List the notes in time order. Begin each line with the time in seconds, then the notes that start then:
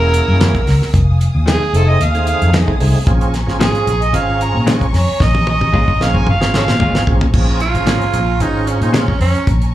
Already playing: E1 A#3 C#4 E4 G#4 A#4 F#5 A#5 E6
0.14 closed hi-hat
0.28 F#2
0.40 F#2 E3 A#3 C#4, snare, closed hi-hat
0.54 kick, closed hi-hat
0.67 C#2, snare, open hi-hat
0.82 muted fingered electric bass stroke, snare
0.94 F1 F5 G#5 D#6, kick, closed hi-hat
1.21 closed hi-hat
1.35 D#2
1.46 F3 A3 D#4 G#4, snare, closed hi-hat
1.73 F1 A3 C4 D#4 G#4 A4, closed hi-hat
1.90 D#5
2.00 D#2 F5, closed hi-hat
2.14 A3 C4 D#4 G#4, closed hi-hat
2.27 F5, closed hi-hat
2.42 F2, closed hi-hat
2.53 F3 A3 D#4 G#4, snare, closed hi-hat
2.67 A3 C4 D#4 G#4, kick
2.80 C2 A3 C4 D#4 G#4, open hi-hat
2.95 muted fingered electric bass stroke
3.05 A#1 C4 C#4 F4 G#4 A#5 C#6, kick, closed hi-hat
3.21 closed hi-hat
3.34 snare, closed hi-hat
3.47 G#1 C4 C#4 F4 G#4, snare
3.60 A#2 G#3 C#4 F4 G#4, snare, closed hi-hat
3.74 muted fingered electric bass stroke, closed hi-hat
3.87 A#1 G#4, closed hi-hat
4.02 D#5, closed hi-hat
4.13 G#1 C4 C#4 F4 G#4 F5, closed hi-hat
4.41 A#5, closed hi-hat
4.54 A#2
4.66 A#2 G#3 C#4 F4, snare, closed hi-hat
4.81 kick, closed hi-hat
4.93 F2 C#5, snare, open hi-hat
5.08 muted fingered electric bass stroke
5.20 A#1 D#5, kick, snare
5.35 high tom
5.47 D#5, high tom
5.61 G#1, high tom
5.73 A#2 G#3 C#4 F4, kick
5.88 kick
6.00 A#1 C4 C#4 F4 G#4 F5, snare
6.15 G#5, kick
6.27 G#1 F5, mid tom
6.41 C4 C#4 F4 G#4, snare
6.54 A4 C#5 F5, snare
6.68 A#2, snare
6.80 G#1 A#2 G#3 C#4 F4, floor tom
6.94 C4 C#4 F4 G#4, snare
7.07 A#1 C4 C#4 F4 G#4, kick
7.21 floor tom
7.34 A#1 C4 C#4 F4 G#4 G#5 A#5 C#6, kick, crash
7.60 F4, closed hi-hat
7.74 G#1 C4 C#4 F4 G#4, closed hi-hat
7.86 A#2 F3 G#3 C#4, snare, closed hi-hat
8.02 muted fingered electric bass stroke, closed hi-hat
8.13 A#1, closed hi-hat
8.40 G#1 C4 C#4 D#4 F4 G#4, closed hi-hat
8.67 C#4, closed hi-hat
8.81 A#2 D#4, closed hi-hat
8.93 A#2 F3 G#3 C#4, snare, closed hi-hat
9.08 kick
9.20 F2 C#4, open hi-hat
9.35 muted fingered electric bass stroke, closed hi-hat
9.47 A#1, kick, closed hi-hat
9.62 closed hi-hat